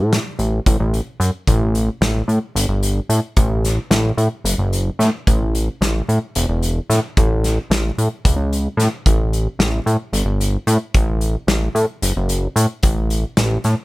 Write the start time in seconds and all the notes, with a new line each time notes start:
Already playing: A2
0.13 snare, closed hi-hat
0.39 A1, closed hi-hat
0.66 A1, kick, closed hi-hat
0.80 A1
0.94 closed hi-hat
1.20 F#2, closed hi-hat
1.47 A1, kick, closed hi-hat
1.75 closed hi-hat
2.01 A1, snare, closed hi-hat
2.28 A2, closed hi-hat
2.55 G1, closed hi-hat
2.68 G1
2.83 closed hi-hat
3.09 A2, closed hi-hat
3.37 A1, kick, closed hi-hat
3.65 snare, closed hi-hat
3.91 A1, snare, closed hi-hat
4.17 A2, closed hi-hat
4.44 F#1, closed hi-hat
4.58 F#1
4.73 closed hi-hat
4.99 A2, snare, closed hi-hat
5.27 A1, kick, closed hi-hat
5.55 closed hi-hat
5.81 A1, snare, closed hi-hat
6.09 A2, closed hi-hat
6.35 E1, closed hi-hat
6.48 E1
6.63 closed hi-hat
6.90 A2, snare, closed hi-hat
7.17 A1, kick, closed hi-hat
7.44 snare, closed hi-hat
7.70 A1, snare, closed hi-hat
7.98 A2, closed hi-hat
8.25 C#2, kick, closed hi-hat
8.36 C#2
8.53 closed hi-hat
8.77 A2, snare, closed hi-hat
9.06 A1, kick, closed hi-hat
9.33 closed hi-hat
9.59 A1, snare, closed hi-hat
9.86 A2, closed hi-hat
10.13 G1, closed hi-hat
10.25 G1
10.41 closed hi-hat
10.67 A2, closed hi-hat
10.94 A1, kick, closed hi-hat
11.21 closed hi-hat
11.47 A1, snare, closed hi-hat
11.75 A2, closed hi-hat
12.02 F#1, closed hi-hat
12.16 F#1
12.29 closed hi-hat
12.56 A2, closed hi-hat
12.83 A1, kick, closed hi-hat
13.10 closed hi-hat
13.37 A1, snare, closed hi-hat
13.64 A2, snare, closed hi-hat